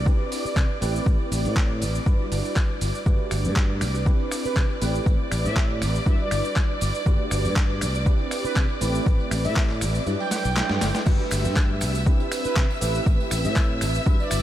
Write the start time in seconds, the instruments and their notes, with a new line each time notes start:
Already playing: fingered electric bass C2, string section D5 D6
0.06 tine electric piano C4 D4 E4 G4 B4, kick, tambourine, cabasa
0.20 tambourine
0.31 open hi-hat, tambourine, cabasa
0.45 muted fingered electric bass stroke, cabasa
0.56 fingered electric bass C3, kick, clap, cabasa
0.69 tambourine
0.81 fingered electric bass A1, tine electric piano A3 C4 E4 G4 B4, open hi-hat, tambourine, cabasa
0.94 tambourine, cabasa
1.06 fingered electric bass A1, kick, tambourine, cabasa
1.20 tambourine
1.31 fingered electric bass A1, open hi-hat, tambourine, cabasa
1.45 fingered electric bass A2, open hi-hat, tambourine, cabasa
1.56 kick, clap, cabasa
1.70 tambourine
1.81 fingered electric bass A1, open hi-hat, tambourine, cabasa
1.95 tambourine, cabasa
2.06 fingered electric bass G2, tine electric piano G3 D4 E4 F#4 B4, kick, tambourine, cabasa
2.19 tambourine
2.31 fingered electric bass G1, open hi-hat, tambourine, cabasa
2.45 tambourine, cabasa
2.56 kick, clap, cabasa
2.69 tambourine
2.81 fingered electric bass G1, open hi-hat, tambourine, cabasa
2.95 tambourine, cabasa
3.06 fingered electric bass G1, tine electric piano A3 D4 F#4 G4 B4, string section D5 D6, kick, tambourine, cabasa
3.31 fingered electric bass G1, finger snap, open hi-hat, tambourine, cabasa
3.45 fingered electric bass G2, tambourine, cabasa
3.56 kick, clap, cabasa
3.69 tambourine
3.81 fingered electric bass C2, finger snap, open hi-hat, tambourine, cabasa
3.95 tambourine, cabasa
4.05 tine electric piano C4 D4 E4 G4 B4, kick, tambourine, cabasa
4.20 tambourine
4.31 finger snap, open hi-hat, tambourine, cabasa
4.45 analog polysynth B4, muted fingered electric bass stroke, tambourine, cabasa
4.56 fingered electric bass C3, kick, clap, tambourine, cabasa
4.70 tambourine
4.81 fingered electric bass A1, tine electric piano A3 C4 E4 G4 B4, open hi-hat, tambourine, cabasa
4.95 tambourine, cabasa
5.06 fingered electric bass A1, kick, tambourine, cabasa
5.32 fingered electric bass A1, finger snap, open hi-hat, tambourine, cabasa
5.44 fingered electric bass A2, analog polysynth E5, tambourine, cabasa
5.56 kick, clap, tambourine, cabasa
5.70 tambourine
5.81 fingered electric bass A1, finger snap, open hi-hat, tambourine, cabasa
5.94 tambourine, cabasa
6.06 fingered electric bass G2, tine electric piano G3 D4 E4 F#4 B4, analog polysynth E5, kick, tambourine, cabasa
6.20 analog polysynth D5, tambourine
6.31 fingered electric bass G1, finger snap, open hi-hat, tambourine, cabasa
6.45 tambourine, cabasa
6.56 kick, clap, tambourine, cabasa
6.69 tambourine
6.81 fingered electric bass G1, open hi-hat, tambourine, cabasa
6.94 tambourine, cabasa
7.05 fingered electric bass G1, tine electric piano A3 D4 F#4 G4 B4, kick, tambourine, cabasa
7.31 fingered electric bass G1, finger snap, open hi-hat, tambourine, cabasa
7.45 fingered electric bass G2, tambourine, cabasa
7.56 kick, clap, cabasa
7.69 tambourine
7.81 fingered electric bass C2, finger snap, open hi-hat, tambourine, cabasa
7.94 tambourine, cabasa
8.06 tine electric piano C4 D4 E4 G4 B4, kick, tambourine, cabasa
8.19 tambourine
8.31 finger snap, open hi-hat, tambourine, cabasa
8.44 analog polysynth B4, muted fingered electric bass stroke, tambourine, cabasa
8.56 fingered electric bass C3, kick, clap, tambourine, cabasa
8.69 tambourine
8.81 fingered electric bass A1, tine electric piano A3 C4 E4 G4 B4, open hi-hat, tambourine, cabasa
8.95 tambourine, cabasa
9.06 fingered electric bass A1, kick, tambourine, cabasa
9.20 tambourine
9.31 fingered electric bass A1, finger snap, open hi-hat, tambourine, cabasa
9.44 fingered electric bass A2, analog polysynth E5, open hi-hat, tambourine, cabasa
9.56 kick, clap, tambourine, cabasa
9.70 clap, tambourine
9.81 fingered electric bass A1, finger snap, open hi-hat, tambourine, cabasa
9.95 tambourine, cabasa
10.06 fingered electric bass G2, tine electric piano F#3 G3 D4 E4 B4, tambourine, cabasa
10.20 analog polysynth G5, tambourine
10.31 analog polysynth G5, snare, open hi-hat, tambourine, cabasa
10.45 fingered electric bass B1, tambourine, cabasa
10.55 snare, clap, tambourine, cabasa
10.69 fingered electric bass G2, snare, tambourine
10.81 fingered electric bass G1, snare, open hi-hat, tambourine, cabasa
10.94 snare, tambourine, cabasa
11.06 fingered electric bass G1, tine electric piano A3 D4 F#4 G4 B4, string section E5 E6, kick, crash, tambourine, cabasa
11.19 tambourine
11.31 fingered electric bass G1, finger snap, open hi-hat, tambourine, cabasa
11.44 fingered electric bass G2, tambourine, cabasa
11.56 kick, clap, tambourine, cabasa
11.81 fingered electric bass C2, finger snap, open hi-hat, tambourine, cabasa
11.95 tambourine, cabasa
12.06 tine electric piano C4 D4 E4 G4 B4, kick, tambourine, cabasa
12.20 tambourine
12.32 finger snap, open hi-hat, tambourine, cabasa
12.44 analog polysynth B4, muted fingered electric bass stroke, tambourine, cabasa
12.56 fingered electric bass C3, kick, clap, tambourine, cabasa
12.71 tambourine
12.80 fingered electric bass A1, tine electric piano A3 C4 E4 G4 B4, open hi-hat, tambourine, cabasa
12.95 tambourine, cabasa
13.06 fingered electric bass A1, kick, tambourine, cabasa
13.20 tambourine
13.31 fingered electric bass A1, finger snap, open hi-hat, tambourine, cabasa
13.45 fingered electric bass A2, analog polysynth E5, tambourine, cabasa
13.56 kick, clap, tambourine, cabasa
13.81 fingered electric bass A1, finger snap, open hi-hat, tambourine, cabasa
13.95 tambourine, cabasa
14.06 fingered electric bass G2, tine electric piano G3 D4 E4 F#4 B4, analog polysynth E5, kick, tambourine, cabasa
14.20 analog polysynth D5, tambourine
14.31 fingered electric bass G1, finger snap, open hi-hat, tambourine, cabasa